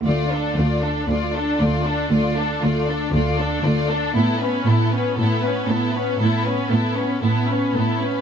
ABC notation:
X:1
M:4/4
L:1/8
Q:1/4=117
K:Ddor
V:1 name="Violin section"
d A d A d A d A | d A d A d A d A | A B A B A B A B | A B A B A B A B |]
V:2 name="Violin section"
F D F D F D F D | F D F D F D F D | E B, E B, E B, E B, | E B, E B, E B, E B, |]
V:3 name="Viola section"
A, D A, D A, D A, D | A, D A, D A, D A, D | B, ^C B, C B, C B, C | B, ^C B, C B, C B, C |]
V:4 name="Cello section" clef=bass
D,,2 D,,2 D,,2 D,,2 | D,,2 D,,2 D,,2 D,,2 | A,,2 A,,2 A,,2 A,,2 | A,,2 A,,2 A,,2 A,,2 |]